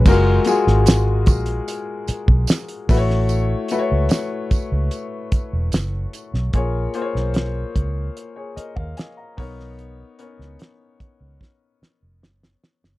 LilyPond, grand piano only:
\new Staff \with { instrumentName = "Grand piano" } { \time 4/4 \key fis \major \tempo 4 = 74 << { r1 | r1 | r2 r16 <gis' cis''>16 <ais' dis''>16 <ais' eis''>16 <dis'' gis''>16 <eis'' ais''>8 r16 | r1 | } \\ { <gis eis' fis' ais'>8 <gis eis' fis' gis'>4. r4. <a e' fis' b' cis''>8~ | <a e' fis' b' cis''>8 <a e' fis' b' cis''>4. r2 | <ais eis' gis' cis''>8 <ais eis' gis' bis' cis''>4. r4. <b dis' ais' cis''>8~ | <b dis' ais' cis''>8 <b cis' dis' ais' cis''>4. r2 | } >> }